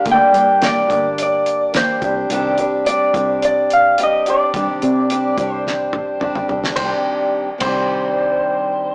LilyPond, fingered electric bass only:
\new Staff \with { instrumentName = "Fingered electric bass" } { \clef bass \time 4/4 \key c \minor \tempo 4 = 107 d,16 r16 g,4 g,,2 c,8 | c,4. c,2 r8 | g,16 r16 c4 c,2 c,8 | c,8 r4 c,2~ c,8 | }